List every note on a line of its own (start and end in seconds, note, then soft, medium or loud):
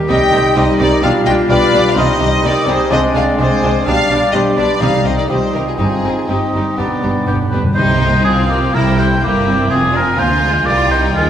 0.00 0.58 G4 medium
0.08 0.18 C2 medium
0.08 0.17 C3 medium
0.08 0.53 G3 medium
0.08 0.17 G3 medium
0.08 2.88 G3 medium
0.08 0.17 C4 medium
0.08 1.02 D#4 medium
0.08 0.18 D#4 medium
0.08 0.19 G4 medium
0.08 0.53 D#5 medium
0.08 0.55 D#5 medium
0.08 0.53 G5 medium
0.32 0.41 C2 medium
0.32 0.41 C3 medium
0.32 0.41 G3 medium
0.32 0.42 C4 medium
0.32 0.40 D#4 medium
0.32 0.41 G4 medium
0.54 0.64 C2 medium
0.54 0.64 C3 medium
0.54 0.64 G3 medium
0.54 1.03 G3 medium
0.54 0.64 C4 medium
0.54 1.04 D#4 medium
0.54 0.64 D#4 medium
0.54 0.65 G4 medium
0.54 0.76 C5 medium
0.54 0.80 D#5 medium
0.54 1.05 D#5 medium
0.77 0.87 C2 medium
0.77 0.88 C3 medium
0.77 0.88 G3 medium
0.77 0.89 C4 medium
0.77 0.88 D#4 medium
0.77 0.88 G4 medium
0.77 1.04 A#4 medium
0.77 1.02 D5 loud
1.02 1.12 B1 medium
1.02 1.11 B2 medium
1.02 1.50 G3 medium
1.02 1.12 G3 medium
1.02 1.95 D4 medium
1.02 1.12 D4 medium
1.02 1.12 F4 medium
1.02 1.98 F4 medium
1.02 1.11 G4 medium
1.02 1.24 D5 medium
1.02 1.11 F5 medium
1.02 1.50 F5 medium
1.25 1.35 B1 medium
1.25 1.34 B2 medium
1.25 1.35 G3 medium
1.25 1.35 D4 medium
1.25 1.34 F4 medium
1.25 1.34 G4 medium
1.25 1.31 D#5 medium
1.25 1.34 G5 loud
1.49 1.58 B1 medium
1.49 1.57 B2 medium
1.49 1.57 G3 medium
1.49 1.96 G3 medium
1.49 1.57 D4 medium
1.49 1.58 F4 medium
1.49 1.58 G4 medium
1.49 1.96 B4 loud
1.49 1.90 D5 loud
1.49 1.99 F5 medium
1.72 1.82 B1 medium
1.72 1.81 B2 medium
1.72 1.80 G3 medium
1.72 1.80 D4 medium
1.72 1.82 F4 medium
1.72 1.82 G4 medium
1.90 1.97 F5 medium
1.95 2.04 C2 medium
1.95 2.05 C3 medium
1.95 2.04 G3 medium
1.95 2.93 G3 medium
1.95 2.04 C4 medium
1.95 2.93 D#4 medium
1.95 2.90 D#4 medium
1.95 2.06 D#4 medium
1.95 2.06 G4 medium
1.95 2.44 C5 medium
1.95 2.92 D#5 medium
1.95 2.45 D#5 loud
2.20 2.28 C2 medium
2.20 2.28 C3 medium
2.20 2.28 G3 medium
2.20 2.28 C4 medium
2.20 2.28 D#4 medium
2.20 2.29 G4 medium
2.43 2.51 C2 medium
2.43 2.52 C3 medium
2.43 2.52 G3 medium
2.43 2.51 C4 medium
2.43 2.53 D#4 medium
2.43 2.53 G4 medium
2.43 2.68 A#4 medium
2.43 2.69 D5 loud
2.66 2.74 C2 medium
2.66 2.75 C3 medium
2.66 2.76 G3 medium
2.66 2.76 C4 medium
2.66 2.76 D#4 medium
2.66 2.76 G4 medium
2.66 2.93 G#4 medium
2.66 2.92 C5 loud
2.90 2.98 C2 medium
2.90 2.99 C3 medium
2.90 3.85 G#3 medium
2.90 2.99 G#3 medium
2.90 3.37 G#3 medium
2.90 3.86 C4 medium
2.90 3.85 D4 medium
2.90 2.99 D4 medium
2.90 2.99 F4 medium
2.90 3.16 C5 loud
2.90 3.39 D5 medium
2.90 3.00 D#5 medium
3.14 3.22 C2 medium
3.14 3.22 C3 medium
3.14 3.23 G#3 medium
3.14 3.23 D4 medium
3.14 3.24 D4 medium
3.14 3.24 F4 medium
3.14 3.38 D5 medium
3.14 3.24 F5 medium
3.38 3.46 C2 medium
3.38 3.47 C3 medium
3.38 3.85 G#3 medium
3.38 3.47 G#3 medium
3.38 3.47 D4 medium
3.38 3.47 F4 medium
3.38 3.86 G#4 loud
3.38 3.86 C5 loud
3.38 3.87 D5 medium
3.62 3.70 C2 medium
3.62 3.70 C3 medium
3.62 3.70 G#3 medium
3.62 3.70 D4 medium
3.62 3.72 D4 medium
3.62 3.71 F4 medium
3.86 3.94 B1 medium
3.86 3.94 B2 medium
3.86 4.77 G3 medium
3.86 3.94 G3 medium
3.86 4.78 G3 medium
3.86 3.94 D4 medium
3.86 4.32 D4 medium
3.86 4.77 D4 medium
3.86 3.96 D4 medium
3.86 3.96 G4 medium
3.86 4.36 D5 medium
3.86 4.82 D5 medium
3.86 4.33 F5 loud
4.09 4.17 B1 medium
4.09 4.18 B2 medium
4.09 4.18 G3 medium
4.09 4.18 D4 medium
4.09 4.19 D4 medium
4.09 4.19 G4 medium
4.32 4.42 B1 medium
4.32 4.42 B2 medium
4.32 4.41 G3 medium
4.32 4.41 D4 medium
4.32 4.42 D4 medium
4.32 4.79 G4 medium
4.32 4.42 G4 medium
4.32 4.58 C5 medium
4.32 4.40 D#5 medium
4.56 4.65 B1 medium
4.56 4.65 B2 medium
4.56 4.64 G3 medium
4.56 4.64 D4 medium
4.56 4.66 D4 medium
4.56 4.66 G4 medium
4.56 4.82 B4 medium
4.56 4.81 D5 medium
4.79 4.88 C2 medium
4.79 4.89 C3 medium
4.79 5.51 C3 medium
4.79 5.28 G3 medium
4.79 4.88 G3 medium
4.79 5.29 G3 medium
4.79 4.88 C4 medium
4.79 5.31 D#4 medium
4.79 5.29 D#4 medium
4.79 4.90 D#4 medium
4.79 4.90 G4 medium
4.79 5.07 D5 medium
4.79 5.29 D#5 medium
4.79 5.05 F5 medium
5.04 5.12 C2 medium
5.04 5.13 C3 medium
5.04 5.12 G3 medium
5.04 5.12 C4 soft
5.04 5.13 D#4 soft
5.04 5.13 G4 soft
5.04 5.18 C5 medium
5.04 5.18 D#5 medium
5.18 5.24 A#4 medium
5.18 5.23 D5 medium
5.28 5.37 C2 medium
5.28 5.37 C3 medium
5.28 5.79 G3 soft
5.28 5.37 G3 medium
5.28 5.79 G3 medium
5.28 5.37 C4 soft
5.28 5.36 D#4 soft
5.28 5.78 D#4 medium
5.28 5.81 F4 medium
5.28 5.36 G4 soft
5.28 5.37 G4 medium
5.28 5.54 C5 medium
5.28 5.78 D#5 soft
5.53 5.61 C2 soft
5.53 5.62 C3 medium
5.53 5.61 G3 soft
5.53 5.62 C4 soft
5.53 5.62 D#4 soft
5.53 5.62 G4 soft
5.53 5.70 G4 medium
5.53 5.67 A#4 medium
5.67 5.79 F4 soft
5.67 5.72 G#4 medium
5.78 5.86 G1 medium
5.78 5.86 G2 medium
5.78 5.87 G3 medium
5.78 6.27 C4 medium
5.78 6.30 C4 soft
5.78 5.87 C4 soft
5.78 5.87 D#4 medium
5.78 6.29 D#4 medium
5.78 7.53 D#4 medium
5.78 6.29 F4 medium
5.78 5.86 G4 medium
5.78 6.29 G#4 medium
5.78 6.14 D#5 medium
6.03 6.11 G1 medium
6.03 6.11 G2 soft
6.03 6.12 G3 soft
6.03 6.12 C4 soft
6.03 6.13 D#4 soft
6.03 6.13 G4 soft
6.28 6.37 G1 medium
6.28 6.37 G2 medium
6.28 6.37 G3 soft
6.28 6.77 C4 soft
6.28 6.37 C4 medium
6.28 6.79 C4 soft
6.28 6.38 D#4 soft
6.28 7.51 D#4 soft
6.28 6.79 D#4 soft
6.28 6.37 G4 soft
6.28 7.54 G4 medium
6.28 6.78 D#5 medium
6.54 6.62 G1 soft
6.54 6.62 G2 soft
6.54 6.62 G3 soft
6.54 6.62 C4 soft
6.54 6.64 D#4 soft
6.54 6.64 G4 soft
6.77 6.86 G1 medium
6.77 6.86 G2 medium
6.77 6.86 G2 soft
6.77 6.88 G3 soft
6.77 7.51 B3 medium
6.77 7.53 B3 soft
6.77 6.88 B3 soft
6.77 7.53 D4 soft
6.77 6.87 D4 soft
6.77 6.87 G4 medium
6.77 7.26 D5 soft
6.87 6.94 G2 soft
6.95 7.02 G2 soft
7.03 7.12 G1 soft
7.03 7.11 G2 soft
7.03 7.09 G2 soft
7.03 7.11 G3 soft
7.03 7.11 B3 soft
7.03 7.12 D4 soft
7.03 7.12 G4 soft
7.11 7.18 G2 soft
7.19 7.25 G2 soft
7.26 7.36 G1 medium
7.26 7.33 G2 medium
7.26 7.36 G2 soft
7.26 7.36 G3 soft
7.26 7.36 B3 medium
7.26 7.36 B3 soft
7.26 7.35 D4 soft
7.26 7.39 G4 medium
7.26 7.36 G4 soft
7.34 7.40 G2 medium
7.41 7.48 G2 medium
7.49 7.55 G2 medium
7.49 7.61 G2 soft
7.49 7.61 B3 soft
7.49 7.61 D4 medium
7.49 7.62 B4 medium
7.53 7.61 G1 soft
7.53 7.63 G2 medium
7.53 7.61 G3 soft
7.53 7.61 G4 soft
7.64 7.71 G2 medium
7.75 8.22 C2 medium
7.75 8.46 C3 medium
7.75 8.23 C3 medium
7.75 7.85 G3 medium
7.75 8.25 D#4 medium
7.75 8.22 D#4 medium
7.75 8.24 C5 loud
7.75 8.23 G5 medium
8.01 8.09 A#3 medium
8.24 8.73 C2 medium
8.24 8.49 C4 medium
8.24 8.73 C4 medium
8.24 8.74 F4 medium
8.24 8.36 G#4 loud
8.24 8.75 F5 medium
8.48 8.74 A#3 medium
8.48 8.76 G4 medium
8.73 9.22 C2 medium
8.73 9.22 C3 medium
8.73 9.43 C3 medium
8.73 9.23 G3 medium
8.73 8.97 E4 medium
8.73 9.21 E4 medium
8.73 9.00 A#4 medium
8.73 9.24 G5 medium
8.98 9.06 E4 medium
8.98 9.23 C5 medium
9.22 9.70 G1 medium
9.22 9.70 G2 medium
9.22 9.46 A#3 medium
9.22 9.70 A#3 medium
9.22 9.69 E4 medium
9.22 9.70 G4 medium
9.22 9.71 E5 medium
9.48 9.70 C4 medium
9.69 10.17 F1 medium
9.69 10.18 F2 medium
9.69 9.77 C4 medium
9.69 10.18 C4 medium
9.69 10.17 F4 medium
9.69 9.97 G#4 loud
9.69 10.68 G#5 medium
9.94 10.02 D4 medium
9.94 10.20 A#4 medium
10.18 10.66 D2 medium
10.18 10.43 A#3 medium
10.18 10.65 F4 medium
10.18 10.66 F4 medium
10.18 10.67 C5 loud
10.42 10.66 G#3 medium
10.66 11.14 C2 medium
10.66 11.15 G3 medium
10.66 10.90 F4 loud
10.66 11.16 A#4 medium
10.66 10.91 D5 medium
10.66 11.30 G5 medium
10.90 11.15 D#4 medium
10.90 11.02 C5 medium
11.14 11.30 D#2 medium
11.14 11.30 F3 medium
11.14 11.30 G#3 medium
11.14 11.30 F4 medium
11.14 11.30 G#4 medium